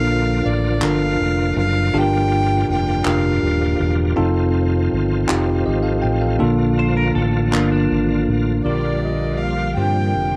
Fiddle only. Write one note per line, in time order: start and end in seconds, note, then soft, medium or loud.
0.00 0.48 F5 medium
0.46 0.85 D5 medium
0.83 1.57 F5 medium
1.59 1.99 F5 medium
1.97 2.70 G5 loud
2.71 3.10 G5 medium
3.08 3.91 F5 medium
8.63 9.39 D5 medium
9.38 9.74 F5 medium
9.75 10.37 G5 medium